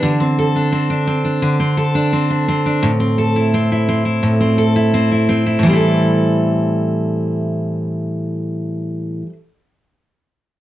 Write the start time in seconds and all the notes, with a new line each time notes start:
Already playing: D4 G4
0.03 D3
0.20 C4
0.39 A4
0.56 D4
0.72 C4
0.90 D4
1.07 C4
1.25 D4
1.42 D3
1.60 C4
1.77 A4
1.95 D4
2.13 C4
2.30 D4
2.48 C4
2.66 D4
2.83 A2
3.00 C4
3.18 A4
3.36 E4
3.54 C4
3.72 E4
3.89 C4
4.05 E4
4.23 A2
4.41 C4
4.58 A4
4.76 E4
4.94 C4
5.12 E4
5.29 C4
5.46 E4
5.59 A2
5.63 E3 G3
5.70 C4 E4
5.76 A4